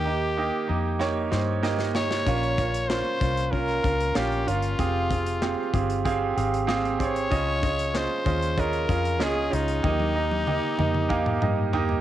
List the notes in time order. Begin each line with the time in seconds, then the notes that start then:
Already playing: D#2 D#3 A#3 D#4 G4 D#5
0.05 A#3 D#4 G4 D#5
0.37 A#3 D#4 G4 D#5
0.67 F2 A#3 D#4 G4 D#5
0.99 A#3 D#4 G4 C#5, snare
1.30 G2 A#3 D#4 G4 C5, snare
1.62 A#3 D#4 G4 D#5, snare
1.79 snare
1.95 A#3 D#4 G4 C#5 D#5, snare
2.11 snare
2.26 A#1 A#2 C#4 F4 A#4 F5, kick, closed hi-hat
2.43 closed hi-hat
2.58 C#4 F4 A#4 F5, kick, closed hi-hat
2.74 closed hi-hat
2.88 C#4 F4 A#4 C5 F5, snare, clap
3.20 C2 C#4 F4 A#4 F5, kick, closed hi-hat
3.38 closed hi-hat
3.51 C#4 F4 A#4 F5, kick, closed hi-hat
3.68 closed hi-hat
3.83 C#2 C#4 F4 A#4 F5, kick, closed hi-hat
4.01 closed hi-hat
4.15 A#1 C#4 F4 G4 A#4 F5, snare, clap
4.32 closed hi-hat
4.46 G1 C#4 F4 A#4 F5, closed hi-hat
4.63 closed hi-hat
4.79 F1 C4 G4 G#4 F5, kick, closed hi-hat
5.10 C4 G4 G#4 F5, kick, closed hi-hat
5.27 closed hi-hat
5.42 C4 G4 G#4 F5, snare, clap
5.73 G1 C4 G4 G#4 F5, kick, closed hi-hat
5.90 closed hi-hat
6.05 C4 G4 G#4 F5, kick, closed hi-hat
6.36 G#1 C4 G4 G#4 F5, closed hi-hat
6.54 closed hi-hat
6.67 C4 G4 G#4 F5, snare, clap
6.85 closed hi-hat
6.99 C4 G4 G#4 C5 C#5, kick, closed hi-hat
7.16 closed hi-hat
7.30 C#2 C#3 C#4 F4 G#4 D#5, kick, closed hi-hat
7.62 C#4 F4 G#4 D#5, kick, closed hi-hat
7.79 closed hi-hat
7.94 C#4 F4 G#4 C5 D#5, snare, clap
8.25 D#2 C#4 F4 G#4 D#5, kick, closed hi-hat
8.43 closed hi-hat
8.57 C#4 F4 G#4 A#4 D#5, kick, closed hi-hat
8.73 closed hi-hat
8.88 F2 C#4 F4 G#4 F5, kick, closed hi-hat
9.05 closed hi-hat
9.19 C#2 C#4 F4 G#4 D#5, snare, clap
9.23 G#4
9.50 C#2 C#4 D#4 F4 G#4 D#5, closed hi-hat
9.68 closed hi-hat
9.83 D#2 D#3 A#3 D#4 G4 D#5, kick, high tom
10.00 high tom
10.14 A#3 D#4 G4 D#5
10.31 high tom
10.47 A#3 D#4 G4 D#5, mid tom
10.78 F2 A#3 D#4 G4 D#5, mid tom
10.94 mid tom
11.09 A#3 D#4 G4 F5, kick
11.26 mid tom
11.41 G2 A#3 D#4 G4 D#5, mid tom
11.73 A#3 D#4 G4 D#5, floor tom
11.89 floor tom